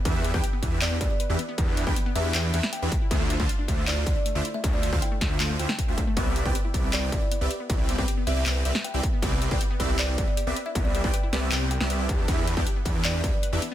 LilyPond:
<<
  \new Staff \with { instrumentName = "Kalimba" } { \time 4/4 \key c \major \tempo 4 = 157 r2 d''8 d''16 d''16 r4 | r4. e''16 e''16 r8 e''8 g''16 g''16 r8 | r2 d''8 d''16 d''16 r8. e''16~ | e''16 d''8 r16 g''8. r8. g''16 g''16 r4 |
r2 d''8 d''16 d''16 r4 | r4. e''16 e''16 r8 e''8 g''16 g''16 r8 | r2 d''8 d''16 d''16 r8. e''16~ | e''16 d''8 r16 g''8. r8. g''16 g''16 r4 |
r2 d''8 d''16 d''16 r4 | }
  \new Staff \with { instrumentName = "Supersaw synth" } { \time 4/4 \key c \major <e d' g' b' e''>8. <e d' g' b' g''>16 r8 <e d' g' b' e''>8 <e d' g' b' g''>8 <e d' g' b' e''>16 r8 <e d' g' b' e''>16 r8 | <e d' g' b' e''>8. <e d' g' b' g''>16 r8 <e d' g' b' e''>8 <e d' g' b' g''>8 <e d' g' b' e''>16 r8 <e d' g' b' e''>16 r8 | <d d' f' c'' e''>8. <d d' f' c'' f''>16 r8 <d d' f' c'' e''>8 <d d' f' c'' f''>8 <d d' f' c'' e''>16 r8 <d d' f' c'' e''>16 r8 | <d d' f' c'' e''>8. <d d' f' c'' f''>16 r8 <d d' f' c'' e''>8 <d d' f' c'' f''>8 <d d' f' c'' e''>16 r8 <d d' f' c'' e''>16 r8 |
<c' g' b' d'' e''>8. <c' g' b' d'' g''>16 r8 <c' g' b' d'' e''>8 <c' g' b' d'' g''>8 <c' g' b' d'' e''>16 r8 <c' g' b' d'' e''>16 r8 | <c' g' b' d'' e''>8. <c' g' b' d'' g''>16 r8 <c' g' b' d'' e''>8 <c' b' d''>8 <c' g' b' d'' e''>16 r8 <c' g' b' d'' e''>16 r8 | <c' g' b' d'' e''>8. <c' g' b' d'' g''>16 r8 <c' g' b' d'' e''>8 <c' g' b' d'' g''>8 <c' g' b' d'' e''>16 r8 <c' g' b' d'' e''>16 r8 | <c' g' b' d'' e''>8. <c' g' b' d'' g''>16 r8 <c' g' b' d'' e''>8 <c' g' b' d'' g''>8 r16 <c' g' b' d'' e''>8. <e d' g' b' a''>8 |
<e d' g' b' e''>8. <e d' g' b' g''>16 r8 <e d' g' b' e''>8 <e d' g' b' g''>8 <e d' g' b' e''>16 r8 <e d' g' b' e''>16 r8 | }
  \new Staff \with { instrumentName = "Synth arpeggio sound" } { \time 4/4 \key c \major b'16 e'16 b16 b16 g'16 b16 b'16 e'16 b16 b16 g'16 b16 b'16 e'16 b16 b16 | g'16 b16 b'16 e'16 b16 b16 g'16 b16 b'16 e'16 b16 b16 g'16 b16 b'16 e'16 | a16 a16 e'16 a16 f'16 d'16 a16 a16 e'16 a16 f'16 d'16 a16 a16 e'16 a16 | f'16 d'16 a16 a16 e'16 a16 f'16 d'16 a16 a16 e'16 a16 f'16 d'16 a16 a16 |
b16 b16 g'16 b16 b'16 e'16 b16 b16 g'16 b16 b'16 e'16 b16 b16 g'16 b16 | b'16 e'16 b16 b16 g'16 b16 b'16 e'16 b16 b16 g'16 b16 b'16 e'16 b16 b16 | g'16 b16 b'16 e'16 b16 b16 g'16 b16 b'16 e'16 b16 b16 g'16 b16 b'16 e'16 | b16 b16 g'16 b16 b'16 e'16 b16 b16 g'16 b16 g'16 e'16 b16 e'16 g'16 g'16 |
b'16 e'16 b16 b16 g'16 b16 b'16 e'16 b16 b16 g'16 b16 b'16 e'16 b16 r16 | }
  \new Staff \with { instrumentName = "Detuned saw bass" } { \clef bass \time 4/4 \key c \major e,8. e,16 r8 e,8 e,8 e,16 r8 e,16 r8 | e,8. e,16 r8 e,8 e,8 e,16 r8 e,16 r8 | d,8. d,16 r8 d,8 d,8 d,16 r8 d,16 r8 | d,8. d,16 r8 d,8 d,8 d,16 r8 d,16 r8 |
c,8. c,16 r8 c,8 c,8 c,16 r8 c,16 r8 | c,8. c,16 r8 c,8 c,8 c,16 r8 c,16 r8 | c,8. c,16 r8 c,8 c,8 c,16 r8 c,16 r8 | c,8. c,16 r8 c,8 c,8. c,8. e,8 |
e,8. e,16 r8 e,8 e,8 e,16 r8 e,16 r8 | }
  \new DrumStaff \with { instrumentName = "Drums" } \drummode { \time 4/4 <hh bd>8 hh16 bd16 hh8 <hh bd>8 <hc hh>8 <hh bd>8 hh8 hh8 | <hh bd>8 hh16 bd16 hh8 hh8 <hc hh>8 hh16 sn16 hh8 <hh bd>8 | <hh bd>8 hh16 bd16 hh8 <hh bd>8 <hc hh>8 <hh bd>8 hh8 hh8 | <hh bd>8 hh16 bd16 hh8 <hh bd sn>8 <hc hh>8 hh16 sn16 <hh bd>8 <hh bd>8 |
<hh bd>8 hh16 bd16 hh8 <hh bd>8 <hc hh>8 <hh bd>8 hh8 hh8 | <hh bd>8 hh16 bd16 hh8 hh8 <hc hh>8 hh16 sn16 hh8 <hh bd>8 | <hh bd>8 hh16 bd16 hh8 <hh bd>8 <hc hh>8 <hh bd>8 hh8 hh8 | <hh bd>8 hh16 bd16 hh8 <hh sn>8 <hc hh>8 hh16 sn16 hh8 <hh bd>8 |
<hh bd>8 hh16 bd16 hh8 <hh bd>8 <hc hh>8 <hh bd>8 hh8 hh8 | }
>>